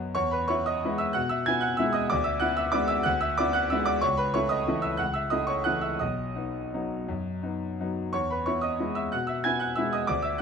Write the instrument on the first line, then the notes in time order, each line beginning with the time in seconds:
grand piano
Already playing: F#2 F#3 B3 F#4
0.15 E2 C#5 C#6
0.31 B4 B5
0.48 B3 E4 C#5 C#6
0.66 D#5 D#6
0.84 G#3 B3 E4
0.98 E5 E6
1.13 B2 F#5 F#6
1.29 E5 E6
1.46 B3 E4 G#5 G#6
1.61 F#5 F#6
1.77 G#3 B3 E4 E5 E6
1.93 D#5 D#6
2.10 D2 D5 D6
2.24 E5 E6
2.40 B3 E4 F#5 F#6
2.57 E5 E6
2.72 G#3 B3 E4 D5 D6
2.88 E5 E6
3.03 D2 F#5 F#6
3.21 E5 E6
3.38 B3 E4 D5 D6
3.53 F#5 F#6
3.70 G#3 B3 E4 E5 E6
3.86 D5 D6
4.01 C#2 C#5 C#6
4.17 B4 B5
4.34 A3 E4 C#5 C#6
4.49 D#5 D#6
4.67 E3 A3 E4
4.82 E5 E6
4.97 C#2 F#5 F#6
5.14 E5 E6
5.30 A3 E4 D#5 D#6
5.47 C#5 C#6
5.64 E3 A3 E4 F#5 F#6
5.81 E5 E6
5.99 B1 D#5 D#6
6.36 B3 D#4
6.74 F#3 B3 D#4
7.08 F#2
7.43 B3 D#4
7.80 F#3 B3 D#4
8.13 E2 C#5 C#6
8.30 B4 B5
8.46 B3 E4 C#5 C#6
8.61 D#5 D#6
8.79 G#3 B3 E4
8.95 E5 E6
9.12 B2 F#5 F#6
9.27 E5 E6
9.44 B3 E4 G#5 G#6
9.60 F#5 F#6
9.76 G#3 B3 E4 E5 E6
9.93 D#5 D#6
10.07 D2 D5 D6
10.22 E5 E6
10.38 F#6